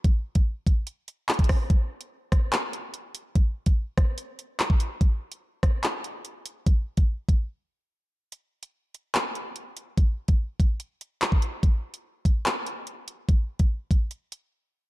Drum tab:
HH |x-----x-----x---x---x---xxxxo---|x-----x-----x---x---x---x---x---|x-----x-----x---x---x---x---x---|x-----x-----x---x---x---x---x---|
CP |------------------------x-------|----------------x---------------|------------------------x-------|----------------x---------------|
SD |----------------------------r---|------------r-------------------|------------r-------------------|------------r-------------------|
BD |o-----o-----o-------------o-o---|o-----------o-------------------|o-----o-----o-------------o-----|o-----------o-------------------|

HH |x-----x-----x-------------------|x-----x-----x---x---x---x---x---|x-----x-----x---x---x---x---x---|x-----x-----x---x---x---x---x---|
CP |--------------------------------|----------------x---------------|------------------------x-------|----------------x---------------|
SD |--------------------------------|--------------------------------|--------------------------------|--------------------------------|
BD |o-----o-----o-------------------|--------------------------------|o-----o-----o-------------o-----|o-----------o-------------------|

HH |x-----x-----x---x---x-----------|
CP |--------------------------------|
SD |--------------------------------|
BD |o-----o-----o-------------------|